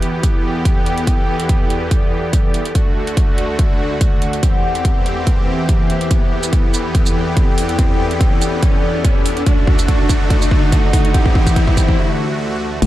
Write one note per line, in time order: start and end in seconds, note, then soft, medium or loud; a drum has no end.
0.00 2.72 E2 medium
0.00 2.72 E3 medium
0.00 2.72 B3 medium
0.00 3.43 E4 medium
0.00 2.72 G4 medium
0.00 5.11 A4 medium
0.00 5.10 D5 medium
0.00 0.58 E5 medium
0.00 closed hi-hat medium
0.00 riser medium
0.12 2.75 G5 medium
0.23 kick medium
0.23 closed hi-hat medium
0.65 kick loud
0.65 closed hi-hat medium
0.86 closed hi-hat soft
0.98 closed hi-hat soft
1.07 kick medium
1.07 closed hi-hat medium
1.40 closed hi-hat medium
1.49 kick medium
1.49 closed hi-hat medium
1.70 closed hi-hat medium
1.91 kick medium
1.91 closed hi-hat medium
2.33 kick medium
2.33 closed hi-hat medium
2.54 closed hi-hat medium
2.65 closed hi-hat medium
2.75 4.41 D2 medium
2.75 4.41 D3 medium
2.75 4.41 A3 medium
2.75 4.41 F#4 medium
2.75 kick medium
2.75 closed hi-hat medium
3.07 closed hi-hat soft
3.17 kick medium
3.17 closed hi-hat medium
3.38 closed hi-hat soft
3.51 5.10 F#5 medium
3.59 kick medium
3.59 closed hi-hat medium
4.01 kick loud
4.01 closed hi-hat medium
4.22 closed hi-hat medium
4.33 closed hi-hat soft
4.43 6.09 E2 medium
4.43 9.42 E3 medium
4.43 6.11 E3 medium
4.43 6.09 C4 medium
4.43 6.09 G4 medium
4.43 kick medium
4.43 closed hi-hat medium
4.75 closed hi-hat medium
4.85 kick medium
4.85 closed hi-hat medium
4.98 6.80 G4 medium
5.06 closed hi-hat soft
5.16 6.11 C5 medium
5.16 7.02 E5 medium
5.27 kick medium
5.27 closed hi-hat medium
5.69 kick medium
5.69 closed hi-hat medium
5.90 closed hi-hat soft
6.01 closed hi-hat soft
6.11 9.43 E2 medium
6.11 9.43 B3 medium
6.11 10.14 E4 medium
6.11 kick loud
6.11 closed hi-hat medium
6.24 11.49 A4 medium
6.38 11.49 D5 medium
6.43 closed hi-hat soft
6.43 shaker medium
6.53 kick loud
6.53 closed hi-hat medium
6.74 closed hi-hat soft
6.74 shaker medium
6.84 9.47 G5 medium
6.95 kick loud
6.95 closed hi-hat medium
7.06 shaker medium
7.37 kick loud
7.37 closed hi-hat medium
7.58 open hi-hat medium
7.69 closed hi-hat soft
7.79 kick loud
7.79 closed hi-hat medium
8.11 closed hi-hat soft
8.21 kick loud
8.21 closed hi-hat medium
8.42 closed hi-hat soft
8.42 shaker medium
8.63 kick loud
8.63 closed hi-hat medium
9.04 kick loud
9.04 closed hi-hat medium
9.26 open hi-hat medium
9.37 closed hi-hat soft
9.46 11.13 D2 medium
9.46 11.13 D3 medium
9.46 11.13 A3 medium
9.46 kick loud
9.46 closed hi-hat medium
9.67 kick loud
9.79 closed hi-hat medium
9.79 shaker medium
9.88 kick loud
9.88 closed hi-hat medium
10.09 kick loud
10.09 closed hi-hat medium
10.09 shaker medium
10.23 11.49 F#5 medium
10.30 kick loud
10.30 closed hi-hat medium
10.42 shaker medium
10.51 kick loud
10.72 kick loud
10.72 closed hi-hat medium
10.93 kick loud
10.93 open hi-hat medium
11.05 closed hi-hat soft
11.14 11.97 E2 medium
11.14 11.98 E3 medium
11.14 11.97 E3 medium
11.14 11.97 C4 medium
11.14 11.97 G4 medium
11.14 kick loud
11.14 closed hi-hat medium
11.26 kick medium
11.35 kick loud
11.47 kick medium
11.47 closed hi-hat medium
11.47 shaker medium
11.52 11.98 G4 medium
11.52 11.98 C5 medium
11.52 11.98 E5 medium
11.52 kick loud
11.56 closed hi-hat medium
11.68 kick medium
11.77 kick loud
11.77 closed hi-hat medium
11.77 shaker medium
11.88 kick medium
11.98 12.81 D2 medium
11.98 12.81 D3 medium
11.98 12.81 A3 medium
11.98 12.81 F#4 medium
12.82 12.87 E1 loud
12.82 kick loud
12.82 closed hi-hat medium
12.82 crash loud
12.82 sub drop medium